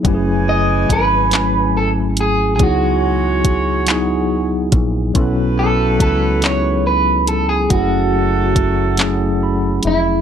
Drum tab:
HH |x-xx-x|x-xx-x|x-xx-x|x-xx-x|
CP |---x--|---x--|---x--|---x--|
BD |o-o---|o-o--o|o-o---|o-o---|